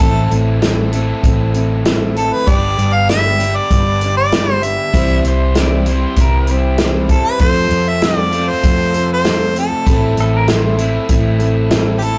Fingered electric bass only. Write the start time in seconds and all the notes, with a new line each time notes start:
0.00 A1
0.31 A1
1.24 A1
2.47 G1
2.78 G1
3.70 G1
4.94 C2
5.24 C2
6.16 C2
7.40 F2
7.71 F2
8.63 F2
9.87 A1
10.17 A1
11.09 A1